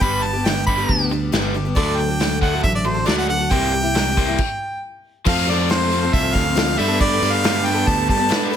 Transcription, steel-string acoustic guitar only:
0.01 G2 D3 G3 B3 D4 G4
0.33 G3 B3 D4 G4
0.45 G2 D3 G3 B3 D4 G4
0.78 G3 B3 D4 G4
1.00 G3 B3 D4 G4
1.10 G3 B3 D4 G4
1.32 G2 D3 G3 B3 D4 G4
1.54 G3 B3 D4 G4
1.65 G3 B3 D4 G4
1.75 D3 A3 D4 F#4 A4
2.08 D4 F#4 A4
2.19 D3 A3 D4 F#4 A4
2.53 D4 F#4 A4
2.74 D4 F#4 A4
2.84 A3 D4 F#4 A4
2.94 D4 F#4 A4
3.06 D3 A3 D4 F#4 A4
3.28 A3 D4 F#4 A4
3.39 D4 F#4 A4
3.51 C3 E3 G3 A#3 E4 G4
3.82 G3 A#3 E4 G4
3.94 C3 E3 G3 A#3 E4 G4
4.26 G3 A#3 E4 G4
5.25 F3 C4 F4 A4
5.47 F3 C4 F4 A4
5.69 F3 C4 F4 A4
5.90 F3 C4 F4 A4
6.02 C4 F4 A4
6.33 F3 C4 F4 A4
6.44 C4 F4 A4
6.55 F3 C4 F4 A4
6.76 A3 B3 D4 A4
6.88 A3 B3 D4 A4
7.00 G2 D3 A3 B3 D4 A4
7.21 A3 B3 D4 A4
7.43 G2 D3 A3 B3 D4 A4
7.64 A3 B3 D4 A4
7.74 A3 B3 D4 A4
8.07 A3 B3 D4 A4
8.18 A3 B3 D4 A4
8.28 G2 D3 A3 B3 D4 A4
8.50 A3 B3 D4

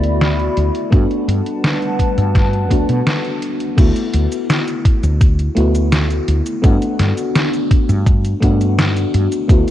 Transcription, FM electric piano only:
Already playing: A3 B3 E4 F#4
0.90 A3 B3 D4 F#4
2.69 A3 B3 D4 F#4
3.77 A3 B3 E4 F#4
5.55 A3 B3 E4 F#4
6.62 A3 B3 D4 F#4
8.40 A3 B3 D4 F#4
9.48 A3 B3 E4 F#4

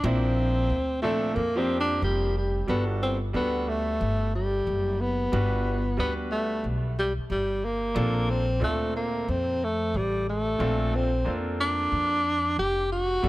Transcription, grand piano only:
0.03 F3 A#3 C4 D4 E4
1.02 A#2 F3 C4 D4 A4
1.56 F3 A#3 C4 D4 G4
2.67 G3 B3 D4 F#4 A4
3.33 G3 B3 D4 F#4 A4
5.32 G3 B3 D4 F#4 B4
5.97 G3 B3 D4 F#4 B4
7.94 A#3 C4 D4 F4 A4
8.60 A#2 C4 D4 F4 A4
10.59 A#2 C4 D4 F4 A4
11.25 A#3 C4 D4 F4 A4
13.22 G3 B3 D4 F#4 A4

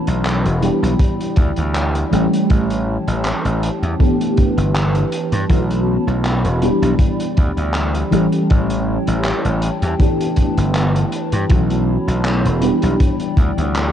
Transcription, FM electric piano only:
Already playing: E3 A3 B3 C#4 F#4
0.61 E3 G3 B3 D4 G4
2.11 E3 G3 A3 C#4 G4
3.98 E3 A3 B3 D4 G4
5.48 E3 A3 B3 C#4 F#4
6.61 E3 G3 B3 D4 G4
8.11 E3 G3 A3 C#4 G4
9.98 E3 A3 B3 D4 G4
11.49 E3 A3 B3 C#4 F#4
12.61 E3 G3 B3 D4 G4

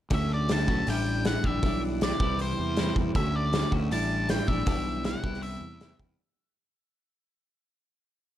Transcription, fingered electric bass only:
0.11 D2
0.68 B1
0.87 A1
1.44 A#1
1.63 B1
2.20 C2
2.59 E2
2.96 E2
3.15 D2
3.72 D2
3.91 A1
4.48 A#1
4.66 B1
5.24 C2
5.61 E2
6.00 E2

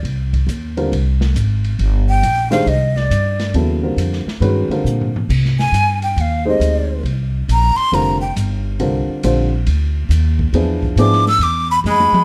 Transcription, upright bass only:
0.03 C2
0.47 D#2
0.92 C2
1.34 G#1
1.79 G1
2.23 A#1
2.66 C2
3.10 G2
3.54 D#2
3.97 F2
4.26 muted upright bass stroke
4.40 G2
4.69 muted upright bass stroke
4.84 A#2
5.29 C3
5.72 G2
6.16 D#2
6.60 D2
7.03 C2
7.48 A#1
7.76 muted upright bass stroke
7.92 F1
8.36 G1
8.80 C2
9.08 muted upright bass stroke
9.23 A#1
9.67 D2
10.09 D#2
10.53 E2
10.96 G#2
11.39 E2
11.84 F2
12.12 muted upright bass stroke

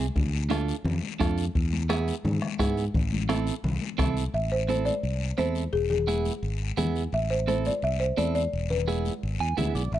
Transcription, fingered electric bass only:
0.16 D2
0.84 F2
1.20 F2
1.55 E2
2.25 G#2
2.59 G#2
2.94 A1
3.64 C2
3.99 C2
4.34 A1
5.03 C2
5.38 E2
5.73 E1
6.42 G#1
6.78 E2
7.13 A1
7.83 C2
8.18 E2
8.53 E1
9.23 G#1
9.40 E2
9.58 D2
9.75 B1
9.92 A1

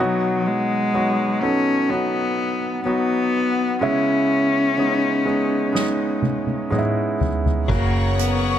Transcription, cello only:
0.00 F#3
0.47 G#3
1.42 C#4
1.90 B3
2.85 B3
3.80 C#4
7.70 A#3
8.18 B3

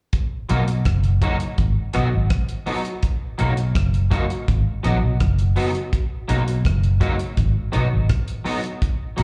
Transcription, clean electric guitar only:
0.49 F#3 A#3 D#4 F#4
1.22 F#3 A#3 D#4 F#4
1.94 F#3 B3 D#4 F#4
2.66 F#3 B3 D#4 F#4
3.38 F#3 A#3 D#4 F#4
4.11 F#3 A#3 D#4 F#4
4.83 F#3 B3 D#4 F#4
5.56 F#3 B3 D#4 F#4
6.28 F#3 A#3 D#4 F#4
7.01 F#3 A#3 D#4 F#4
7.72 F#3 B3 D#4 F#4
8.45 F#3 B3 D#4 F#4
9.17 F#3 A#3 D#4 F#4

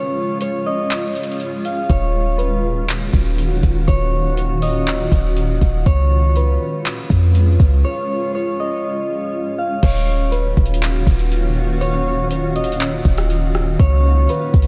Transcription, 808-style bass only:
1.90 D#1
3.13 D#1
3.63 D#1
3.88 D#1
5.12 D#1
5.61 D#1
5.86 C#2
7.10 F2
7.60 C#2
9.83 D#1
10.57 D#1
11.07 D#1
13.05 D#1
13.80 C#2
14.54 C#2

